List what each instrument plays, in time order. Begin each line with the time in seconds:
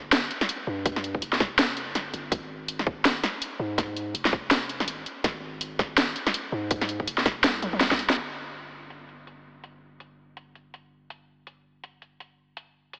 Already playing: 808-style bass G1
0.12 snare, closed hi-hat
0.31 closed hi-hat
0.41 snare
0.49 closed hi-hat
0.67 808-style bass G2
0.86 kick, closed hi-hat
0.96 snare
1.04 closed hi-hat
1.15 kick
1.22 808-style bass F1, closed hi-hat
1.33 snare
1.40 kick, snare
1.59 snare, closed hi-hat
1.77 closed hi-hat
1.88 808-style bass G1
1.95 snare, closed hi-hat
2.14 808-style bass G1, closed hi-hat
2.32 808-style bass G#1, kick, closed hi-hat
2.68 closed hi-hat
2.79 snare
2.87 kick
3.05 snare, closed hi-hat
3.23 snare, closed hi-hat
3.42 closed hi-hat
3.60 808-style bass G#2
3.78 kick, snare, closed hi-hat
3.97 closed hi-hat
4.14 808-style bass F1, closed hi-hat
4.25 snare
4.33 kick
4.51 snare, closed hi-hat
4.69 closed hi-hat
4.80 808-style bass G#1, snare
4.88 closed hi-hat
5.06 closed hi-hat
5.24 808-style bass G#1, kick, snare, closed hi-hat
5.61 closed hi-hat
5.79 kick, snare
5.98 snare, closed hi-hat
6.16 closed hi-hat
6.27 snare
6.34 closed hi-hat
6.52 808-style bass G#2
6.71 kick, closed hi-hat
6.81 snare
6.89 closed hi-hat
7.00 kick
7.07 808-style bass F1, closed hi-hat
7.18 snare
7.26 kick, snare, closed hi-hat
7.44 808-style bass C2, snare, closed hi-hat
7.62 closed hi-hat, high tom
7.73 high tom
7.81 snare, closed hi-hat
7.91 kick, snare
7.99 closed hi-hat
8.10 snare
8.17 808-style bass G1, closed hi-hat
8.54 closed hi-hat
8.90 closed hi-hat
9.09 closed hi-hat
9.27 closed hi-hat
9.64 closed hi-hat
10.00 closed hi-hat
10.37 closed hi-hat
10.55 closed hi-hat
10.74 closed hi-hat
11.10 closed hi-hat
11.47 closed hi-hat
11.84 closed hi-hat
12.02 closed hi-hat
12.20 closed hi-hat
12.57 closed hi-hat
12.93 closed hi-hat